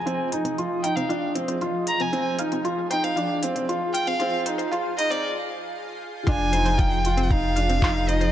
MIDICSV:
0, 0, Header, 1, 7, 480
1, 0, Start_track
1, 0, Tempo, 517241
1, 61, Time_signature, 4, 2, 24, 8
1, 7719, End_track
2, 0, Start_track
2, 0, Title_t, "Violin"
2, 0, Program_c, 0, 40
2, 0, Note_on_c, 0, 80, 91
2, 174, Note_off_c, 0, 80, 0
2, 770, Note_on_c, 0, 79, 96
2, 891, Note_on_c, 0, 77, 85
2, 904, Note_off_c, 0, 79, 0
2, 1136, Note_off_c, 0, 77, 0
2, 1745, Note_on_c, 0, 82, 99
2, 1868, Note_on_c, 0, 80, 92
2, 1882, Note_off_c, 0, 82, 0
2, 2104, Note_off_c, 0, 80, 0
2, 2700, Note_on_c, 0, 79, 100
2, 2823, Note_on_c, 0, 77, 88
2, 2837, Note_off_c, 0, 79, 0
2, 3062, Note_off_c, 0, 77, 0
2, 3652, Note_on_c, 0, 79, 103
2, 3780, Note_on_c, 0, 77, 96
2, 3793, Note_off_c, 0, 79, 0
2, 4020, Note_off_c, 0, 77, 0
2, 4617, Note_on_c, 0, 75, 105
2, 4740, Note_on_c, 0, 74, 98
2, 4754, Note_off_c, 0, 75, 0
2, 4860, Note_off_c, 0, 74, 0
2, 5839, Note_on_c, 0, 80, 90
2, 6308, Note_on_c, 0, 79, 88
2, 6322, Note_off_c, 0, 80, 0
2, 6712, Note_off_c, 0, 79, 0
2, 6712, Note_on_c, 0, 79, 68
2, 6787, Note_on_c, 0, 77, 92
2, 6801, Note_off_c, 0, 79, 0
2, 7503, Note_on_c, 0, 75, 90
2, 7517, Note_off_c, 0, 77, 0
2, 7719, Note_off_c, 0, 75, 0
2, 7719, End_track
3, 0, Start_track
3, 0, Title_t, "Ambient pad"
3, 0, Program_c, 1, 92
3, 0, Note_on_c, 1, 53, 75
3, 0, Note_on_c, 1, 65, 80
3, 0, Note_on_c, 1, 68, 81
3, 0, Note_on_c, 1, 75, 68
3, 2929, Note_on_c, 1, 77, 78
3, 3068, Note_off_c, 1, 75, 0
3, 6923, Note_on_c, 1, 75, 89
3, 7374, Note_off_c, 1, 77, 0
3, 7719, Note_off_c, 1, 53, 0
3, 7719, Note_off_c, 1, 65, 0
3, 7719, Note_off_c, 1, 68, 0
3, 7719, Note_off_c, 1, 75, 0
3, 7719, End_track
4, 0, Start_track
4, 0, Title_t, "Synth arpeggio sound"
4, 0, Program_c, 2, 84
4, 53, Note_on_c, 2, 65, 72
4, 113, Note_off_c, 2, 65, 0
4, 414, Note_on_c, 2, 60, 72
4, 502, Note_off_c, 2, 60, 0
4, 776, Note_on_c, 2, 77, 78
4, 835, Note_off_c, 2, 77, 0
4, 897, Note_on_c, 2, 60, 75
4, 955, Note_off_c, 2, 60, 0
4, 1014, Note_on_c, 2, 65, 96
4, 1074, Note_off_c, 2, 65, 0
4, 1256, Note_on_c, 2, 72, 74
4, 1315, Note_off_c, 2, 72, 0
4, 1376, Note_on_c, 2, 72, 75
4, 1435, Note_off_c, 2, 72, 0
4, 1502, Note_on_c, 2, 65, 83
4, 1558, Note_off_c, 2, 65, 0
4, 1859, Note_on_c, 2, 60, 80
4, 1945, Note_off_c, 2, 60, 0
4, 2218, Note_on_c, 2, 77, 76
4, 2276, Note_off_c, 2, 77, 0
4, 2343, Note_on_c, 2, 60, 74
4, 2398, Note_off_c, 2, 60, 0
4, 2456, Note_on_c, 2, 65, 90
4, 2515, Note_off_c, 2, 65, 0
4, 2696, Note_on_c, 2, 72, 85
4, 2755, Note_off_c, 2, 72, 0
4, 2819, Note_on_c, 2, 72, 78
4, 2877, Note_off_c, 2, 72, 0
4, 2932, Note_on_c, 2, 65, 80
4, 2993, Note_off_c, 2, 65, 0
4, 3299, Note_on_c, 2, 60, 78
4, 3384, Note_off_c, 2, 60, 0
4, 3654, Note_on_c, 2, 77, 72
4, 3714, Note_off_c, 2, 77, 0
4, 3780, Note_on_c, 2, 60, 77
4, 3837, Note_off_c, 2, 60, 0
4, 3894, Note_on_c, 2, 65, 96
4, 3954, Note_off_c, 2, 65, 0
4, 4139, Note_on_c, 2, 72, 77
4, 4196, Note_off_c, 2, 72, 0
4, 4252, Note_on_c, 2, 72, 77
4, 4313, Note_off_c, 2, 72, 0
4, 4375, Note_on_c, 2, 65, 84
4, 4434, Note_off_c, 2, 65, 0
4, 4735, Note_on_c, 2, 60, 84
4, 4823, Note_off_c, 2, 60, 0
4, 5816, Note_on_c, 2, 65, 101
4, 5875, Note_off_c, 2, 65, 0
4, 6058, Note_on_c, 2, 72, 76
4, 6116, Note_off_c, 2, 72, 0
4, 6176, Note_on_c, 2, 72, 78
4, 6235, Note_off_c, 2, 72, 0
4, 6292, Note_on_c, 2, 65, 82
4, 6353, Note_off_c, 2, 65, 0
4, 6657, Note_on_c, 2, 60, 84
4, 6743, Note_off_c, 2, 60, 0
4, 7015, Note_on_c, 2, 77, 82
4, 7074, Note_off_c, 2, 77, 0
4, 7140, Note_on_c, 2, 60, 81
4, 7197, Note_off_c, 2, 60, 0
4, 7262, Note_on_c, 2, 65, 104
4, 7318, Note_off_c, 2, 65, 0
4, 7497, Note_on_c, 2, 72, 76
4, 7556, Note_off_c, 2, 72, 0
4, 7617, Note_on_c, 2, 72, 74
4, 7675, Note_off_c, 2, 72, 0
4, 7719, End_track
5, 0, Start_track
5, 0, Title_t, "Felt piano"
5, 0, Program_c, 3, 0
5, 59, Note_on_c, 3, 60, 89
5, 254, Note_off_c, 3, 60, 0
5, 301, Note_on_c, 3, 63, 70
5, 495, Note_off_c, 3, 63, 0
5, 541, Note_on_c, 3, 65, 83
5, 735, Note_off_c, 3, 65, 0
5, 780, Note_on_c, 3, 63, 77
5, 975, Note_off_c, 3, 63, 0
5, 1017, Note_on_c, 3, 62, 80
5, 1213, Note_off_c, 3, 62, 0
5, 1259, Note_on_c, 3, 60, 78
5, 1454, Note_off_c, 3, 60, 0
5, 1498, Note_on_c, 3, 65, 79
5, 1888, Note_off_c, 3, 65, 0
5, 1974, Note_on_c, 3, 60, 93
5, 2171, Note_off_c, 3, 60, 0
5, 2218, Note_on_c, 3, 63, 74
5, 2414, Note_off_c, 3, 63, 0
5, 2459, Note_on_c, 3, 65, 82
5, 2654, Note_off_c, 3, 65, 0
5, 2700, Note_on_c, 3, 63, 77
5, 2895, Note_off_c, 3, 63, 0
5, 2946, Note_on_c, 3, 62, 84
5, 3138, Note_off_c, 3, 62, 0
5, 3188, Note_on_c, 3, 60, 82
5, 3379, Note_off_c, 3, 60, 0
5, 3422, Note_on_c, 3, 65, 89
5, 3810, Note_off_c, 3, 65, 0
5, 3908, Note_on_c, 3, 60, 96
5, 4100, Note_off_c, 3, 60, 0
5, 4145, Note_on_c, 3, 63, 76
5, 4338, Note_off_c, 3, 63, 0
5, 4382, Note_on_c, 3, 65, 90
5, 4576, Note_off_c, 3, 65, 0
5, 4627, Note_on_c, 3, 63, 80
5, 4819, Note_off_c, 3, 63, 0
5, 5828, Note_on_c, 3, 62, 96
5, 6020, Note_off_c, 3, 62, 0
5, 6071, Note_on_c, 3, 63, 75
5, 6455, Note_off_c, 3, 63, 0
5, 6551, Note_on_c, 3, 65, 81
5, 6741, Note_off_c, 3, 65, 0
5, 6786, Note_on_c, 3, 63, 81
5, 6978, Note_off_c, 3, 63, 0
5, 7026, Note_on_c, 3, 62, 78
5, 7218, Note_off_c, 3, 62, 0
5, 7265, Note_on_c, 3, 63, 89
5, 7458, Note_off_c, 3, 63, 0
5, 7507, Note_on_c, 3, 63, 82
5, 7699, Note_off_c, 3, 63, 0
5, 7719, End_track
6, 0, Start_track
6, 0, Title_t, "Sub bass"
6, 0, Program_c, 4, 38
6, 0, Note_on_c, 4, 29, 82
6, 4856, Note_off_c, 4, 29, 0
6, 5821, Note_on_c, 4, 29, 88
6, 7719, Note_off_c, 4, 29, 0
6, 7719, End_track
7, 0, Start_track
7, 0, Title_t, "Drums"
7, 63, Note_on_c, 9, 42, 28
7, 156, Note_off_c, 9, 42, 0
7, 299, Note_on_c, 9, 42, 68
7, 392, Note_off_c, 9, 42, 0
7, 418, Note_on_c, 9, 42, 38
7, 510, Note_off_c, 9, 42, 0
7, 542, Note_on_c, 9, 42, 31
7, 634, Note_off_c, 9, 42, 0
7, 778, Note_on_c, 9, 42, 74
7, 871, Note_off_c, 9, 42, 0
7, 899, Note_on_c, 9, 42, 39
7, 991, Note_off_c, 9, 42, 0
7, 1021, Note_on_c, 9, 42, 28
7, 1114, Note_off_c, 9, 42, 0
7, 1257, Note_on_c, 9, 42, 71
7, 1350, Note_off_c, 9, 42, 0
7, 1376, Note_on_c, 9, 42, 39
7, 1468, Note_off_c, 9, 42, 0
7, 1497, Note_on_c, 9, 42, 30
7, 1590, Note_off_c, 9, 42, 0
7, 1734, Note_on_c, 9, 42, 67
7, 1827, Note_off_c, 9, 42, 0
7, 1854, Note_on_c, 9, 42, 38
7, 1947, Note_off_c, 9, 42, 0
7, 1977, Note_on_c, 9, 42, 29
7, 2069, Note_off_c, 9, 42, 0
7, 2214, Note_on_c, 9, 42, 68
7, 2307, Note_off_c, 9, 42, 0
7, 2337, Note_on_c, 9, 42, 41
7, 2430, Note_off_c, 9, 42, 0
7, 2458, Note_on_c, 9, 42, 31
7, 2551, Note_off_c, 9, 42, 0
7, 2698, Note_on_c, 9, 42, 73
7, 2791, Note_off_c, 9, 42, 0
7, 2820, Note_on_c, 9, 42, 41
7, 2913, Note_off_c, 9, 42, 0
7, 2941, Note_on_c, 9, 42, 32
7, 3034, Note_off_c, 9, 42, 0
7, 3179, Note_on_c, 9, 42, 73
7, 3272, Note_off_c, 9, 42, 0
7, 3302, Note_on_c, 9, 42, 44
7, 3395, Note_off_c, 9, 42, 0
7, 3426, Note_on_c, 9, 42, 32
7, 3519, Note_off_c, 9, 42, 0
7, 3661, Note_on_c, 9, 42, 77
7, 3753, Note_off_c, 9, 42, 0
7, 3778, Note_on_c, 9, 42, 40
7, 3871, Note_off_c, 9, 42, 0
7, 3896, Note_on_c, 9, 42, 31
7, 3989, Note_off_c, 9, 42, 0
7, 4139, Note_on_c, 9, 42, 79
7, 4232, Note_off_c, 9, 42, 0
7, 4261, Note_on_c, 9, 42, 40
7, 4354, Note_off_c, 9, 42, 0
7, 4385, Note_on_c, 9, 42, 33
7, 4478, Note_off_c, 9, 42, 0
7, 4626, Note_on_c, 9, 42, 75
7, 4719, Note_off_c, 9, 42, 0
7, 4747, Note_on_c, 9, 42, 45
7, 4840, Note_off_c, 9, 42, 0
7, 5822, Note_on_c, 9, 36, 108
7, 5822, Note_on_c, 9, 42, 31
7, 5914, Note_off_c, 9, 36, 0
7, 5915, Note_off_c, 9, 42, 0
7, 6059, Note_on_c, 9, 42, 71
7, 6152, Note_off_c, 9, 42, 0
7, 6179, Note_on_c, 9, 42, 41
7, 6272, Note_off_c, 9, 42, 0
7, 6299, Note_on_c, 9, 42, 31
7, 6301, Note_on_c, 9, 36, 111
7, 6392, Note_off_c, 9, 42, 0
7, 6394, Note_off_c, 9, 36, 0
7, 6540, Note_on_c, 9, 42, 78
7, 6633, Note_off_c, 9, 42, 0
7, 6658, Note_on_c, 9, 42, 42
7, 6751, Note_off_c, 9, 42, 0
7, 6780, Note_on_c, 9, 36, 100
7, 6781, Note_on_c, 9, 42, 29
7, 6872, Note_off_c, 9, 36, 0
7, 6873, Note_off_c, 9, 42, 0
7, 7021, Note_on_c, 9, 42, 73
7, 7114, Note_off_c, 9, 42, 0
7, 7141, Note_on_c, 9, 42, 42
7, 7234, Note_off_c, 9, 42, 0
7, 7259, Note_on_c, 9, 36, 102
7, 7266, Note_on_c, 9, 39, 78
7, 7266, Note_on_c, 9, 42, 31
7, 7352, Note_off_c, 9, 36, 0
7, 7358, Note_off_c, 9, 39, 0
7, 7358, Note_off_c, 9, 42, 0
7, 7504, Note_on_c, 9, 42, 72
7, 7597, Note_off_c, 9, 42, 0
7, 7620, Note_on_c, 9, 42, 40
7, 7713, Note_off_c, 9, 42, 0
7, 7719, End_track
0, 0, End_of_file